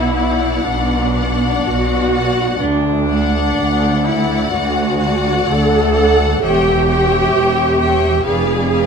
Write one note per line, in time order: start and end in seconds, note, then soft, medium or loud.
0.00 0.53 B1 soft
0.00 0.53 B2 medium
0.00 0.61 E4 medium
0.00 0.13 D5 soft
0.00 0.13 F#5 soft
0.14 1.12 D5 soft
0.14 1.12 F#5 soft
0.14 1.14 F#5 soft
0.64 1.52 B1 medium
0.64 1.52 B2 medium
0.64 1.64 D4 medium
1.13 2.10 D5 soft
1.13 2.09 F#5 soft
1.13 2.11 F#5 soft
1.63 2.49 B1 medium
1.63 2.49 B2 medium
1.63 2.61 F#4 medium
2.12 2.60 D5 soft
2.12 2.60 F#5 soft
2.60 3.46 D2 medium
2.60 4.02 D4 medium
3.09 4.03 D5 soft
3.09 4.03 F#5 soft
3.09 4.04 F#5 soft
3.57 4.41 D2 medium
4.05 4.52 E4 medium
4.05 4.97 D5 soft
4.05 4.97 F#5 soft
4.05 4.98 F#5 soft
4.52 5.35 D2 medium
4.52 5.44 F#4 medium
4.99 5.92 D5 soft
4.99 5.92 F#5 soft
5.45 6.30 D2 medium
5.45 6.42 A4 medium
5.93 6.40 D5 soft
5.93 6.40 F#5 soft
6.41 7.23 E1 medium
6.41 7.22 E2 medium
6.41 8.25 G4 medium
6.41 6.86 C#5 soft
6.41 6.87 E5 soft
6.41 6.86 G5 soft
6.87 7.77 C#5 soft
6.87 7.78 E5 soft
6.87 7.77 G5 soft
7.33 8.14 E1 medium
7.33 8.15 E2 medium
7.80 8.25 C#5 soft
7.80 8.25 E5 soft
7.80 8.25 G5 soft
8.24 8.86 F1 medium
8.24 8.86 F2 medium
8.24 8.86 G#4 medium
8.24 8.71 B4 soft
8.24 8.71 D5 soft
8.24 8.70 F5 soft
8.71 8.86 B4 soft
8.71 8.86 D5 soft
8.71 8.86 F5 medium